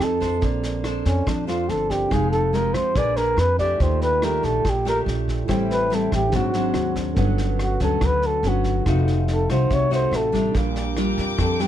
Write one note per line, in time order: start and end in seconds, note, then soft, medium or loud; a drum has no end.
0.00 0.39 F2 medium
0.00 0.40 F3 medium
0.00 0.18 C4 medium
0.00 0.38 C4 soft
0.00 0.18 D#4 medium
0.00 0.41 F4 soft
0.00 0.19 A4 medium
0.00 0.40 A4 soft
0.00 0.44 A4 medium
0.00 0.43 D#5 medium
0.00 cross-stick medium
0.00 snare soft
0.20 0.81 D4 medium
0.20 0.81 A4 medium
0.20 0.81 C5 medium
0.20 kick soft
0.20 snare soft
0.40 1.02 A#1 loud
0.40 1.24 A#3 medium
0.40 1.86 C4 soft
0.40 1.86 A4 soft
0.40 kick medium
0.40 snare soft
0.44 1.88 D5 medium
0.63 snare soft
0.84 1.27 D4 soft
0.84 1.27 A4 medium
0.84 1.27 C5 medium
0.84 cross-stick medium
0.84 snare soft
1.05 1.25 F2 medium
1.05 1.30 C#4 medium
1.05 kick soft
1.05 snare soft
1.26 1.66 F2 medium
1.26 2.09 F3 medium
1.26 1.48 D4 medium
1.26 kick medium
1.26 cross-stick medium
1.26 snare soft
1.47 2.07 D4 medium
1.47 1.71 F4 medium
1.47 2.08 A4 medium
1.47 2.08 C5 medium
1.47 snare soft
1.69 2.08 G1 medium
1.69 1.92 A4 medium
1.69 snare soft
1.89 2.11 C4 soft
1.89 2.14 G4 medium
1.89 2.12 A4 soft
1.89 2.12 A#4 soft
1.89 2.12 D5 soft
1.89 kick soft
1.89 snare soft
2.09 2.70 F1 medium
2.09 2.93 F3 medium
2.09 2.50 G#3 medium
2.09 2.92 D#4 medium
2.09 2.50 D#4 soft
2.09 2.94 G4 soft
2.09 2.50 G4 soft
2.09 kick medium
2.09 cross-stick medium
2.09 snare soft
2.13 2.30 G#4 medium
2.13 2.96 F5 medium
2.31 2.57 A4 medium
2.31 snare soft
2.53 2.94 G#3 medium
2.53 2.94 D#4 medium
2.53 2.94 G4 medium
2.53 2.75 A#4 medium
2.53 snare soft
2.74 2.94 F2 medium
2.74 2.99 C5 medium
2.74 kick soft
2.74 cross-stick medium
2.74 snare soft
2.94 3.35 A#1 medium
2.94 3.59 A#3 medium
2.94 3.77 D4 soft
2.94 3.14 D4 medium
2.94 3.14 G#4 medium
2.94 3.14 B4 medium
2.94 3.79 B4 soft
2.94 3.18 D5 medium
2.94 kick medium
2.94 snare soft
2.99 3.80 G#5 medium
3.16 3.55 D4 medium
3.16 3.56 G#4 medium
3.16 3.41 A#4 medium
3.16 3.56 B4 medium
3.16 snare soft
3.37 3.76 F2 medium
3.37 3.59 B4 medium
3.37 cross-stick medium
3.37 snare soft
3.59 4.19 A3 medium
3.59 4.19 D4 soft
3.59 4.19 G4 medium
3.59 3.83 D5 medium
3.59 kick soft
3.59 snare soft
3.78 4.39 D#2 medium
3.78 4.63 D#3 soft
3.78 5.44 F4 soft
3.78 5.45 A4 soft
3.78 5.46 D5 soft
3.78 kick medium
3.78 snare soft
3.82 4.02 C5 medium
3.82 5.47 G5 medium
4.02 4.26 B4 medium
4.02 snare soft
4.22 4.64 A3 medium
4.22 4.65 D4 medium
4.22 4.65 G4 medium
4.22 4.47 A#4 medium
4.22 cross-stick medium
4.22 snare soft
4.43 4.63 A#1 medium
4.43 4.71 A4 medium
4.43 kick soft
4.43 snare soft
4.65 5.04 A#1 medium
4.65 5.47 A#2 medium
4.65 kick medium
4.65 cross-stick medium
4.65 snare soft
4.69 4.88 G4 medium
4.85 5.45 A3 soft
4.85 5.45 D4 medium
4.85 5.45 G4 medium
4.85 5.00 A#4 medium
4.85 snare soft
5.06 5.45 A#1 medium
5.06 snare soft
5.28 kick soft
5.28 snare soft
5.45 6.08 A1 loud
5.45 6.30 A2 medium
5.45 5.87 G3 medium
5.45 5.87 C4 soft
5.45 6.29 E4 medium
5.45 5.87 E4 medium
5.45 6.30 A4 medium
5.45 6.31 C5 medium
5.45 kick soft
5.45 cross-stick medium
5.45 snare soft
5.50 6.32 G5 medium
5.71 5.96 B4 medium
5.71 snare soft
5.90 6.19 G3 medium
5.90 6.19 C4 medium
5.90 6.19 E4 medium
5.90 snare soft
5.95 6.12 A4 medium
6.12 6.31 A1 medium
6.12 6.37 G4 medium
6.12 kick soft
6.12 cross-stick medium
6.12 snare soft
6.29 6.72 G#1 medium
6.29 7.13 D4 soft
6.29 7.14 G#4 soft
6.29 7.15 C5 soft
6.29 kick medium
6.29 snare soft
6.33 7.15 G#2 medium
6.33 6.51 F#3 medium
6.33 6.51 C4 medium
6.33 6.51 D4 medium
6.33 6.97 F#4 medium
6.33 7.16 F#5 medium
6.54 7.14 F#3 medium
6.54 7.14 C4 medium
6.54 7.14 D4 medium
6.54 snare soft
6.74 7.13 D#2 medium
6.74 cross-stick medium
6.74 snare soft
6.96 kick soft
6.96 snare soft
7.12 8.80 C#4 medium
7.12 8.81 A4 medium
7.12 8.82 B4 medium
7.12 snare soft
7.17 7.76 G1 loud
7.17 7.99 G2 soft
7.17 7.77 F#3 medium
7.17 7.77 B3 medium
7.17 7.77 C#4 medium
7.17 8.83 F#5 medium
7.17 kick medium
7.38 snare soft
7.59 7.81 F#4 medium
7.59 cross-stick medium
7.59 snare soft
7.80 8.00 D2 medium
7.80 8.40 F#3 medium
7.80 8.40 B3 medium
7.80 8.41 C#4 medium
7.80 8.07 A4 medium
7.80 kick soft
7.80 snare soft
8.01 8.40 D2 medium
8.01 8.83 D3 medium
8.01 kick medium
8.01 cross-stick medium
8.01 snare soft
8.06 8.28 B4 medium
8.22 snare soft
8.26 8.50 A4 medium
8.43 8.82 G1 medium
8.43 8.82 F#3 medium
8.43 8.83 B3 medium
8.43 8.83 C#4 medium
8.43 snare soft
8.48 8.88 F#4 medium
8.64 kick soft
8.64 snare soft
8.82 9.45 F1 medium
8.82 10.49 D#4 soft
8.82 10.50 F#4 soft
8.82 10.51 A4 soft
8.82 kick medium
8.82 cross-stick medium
8.82 snare soft
8.87 9.68 F3 soft
8.87 9.46 A3 medium
8.87 9.46 D#4 medium
8.87 9.46 F#4 medium
8.87 10.52 F5 medium
9.08 snare soft
9.28 snare soft
9.34 9.50 A4 medium
9.49 9.68 C2 medium
9.49 9.88 A3 medium
9.49 9.88 D#4 medium
9.49 9.88 F#4 medium
9.49 9.75 C5 medium
9.49 kick soft
9.49 cross-stick medium
9.49 snare soft
9.70 10.09 C2 medium
9.70 10.52 C3 medium
9.70 9.93 C#5 medium
9.70 kick medium
9.70 snare soft
9.90 10.29 A3 medium
9.90 10.29 D#4 medium
9.90 10.29 F#4 medium
9.90 10.18 C5 medium
9.90 snare soft
10.11 10.50 A1 medium
10.11 cross-stick medium
10.11 snare soft
10.16 10.56 A4 medium
10.32 10.95 G3 medium
10.32 10.96 D4 medium
10.32 10.96 F4 medium
10.32 kick soft
10.32 snare soft
10.52 11.13 A#1 medium
10.52 11.36 A#2 medium
10.52 11.68 D4 soft
10.52 11.68 G4 soft
10.52 11.68 A#4 medium
10.52 11.68 A#4 soft
10.52 11.68 G5 medium
10.52 11.68 D6 medium
10.52 kick medium
10.52 snare soft
10.58 11.68 F5 soft
10.76 snare soft
10.97 11.56 G3 medium
10.97 11.56 D4 medium
10.97 11.56 F4 medium
10.97 cross-stick medium
10.97 snare soft
11.18 11.37 F2 medium
11.18 kick soft
11.18 snare soft
11.38 11.68 F2 medium
11.38 11.68 F3 medium
11.38 11.62 A4 medium
11.38 kick medium
11.38 cross-stick medium
11.38 snare soft
11.60 11.68 G3 medium
11.60 11.68 D4 medium
11.60 11.68 F4 medium
11.60 11.68 G4 medium
11.60 snare soft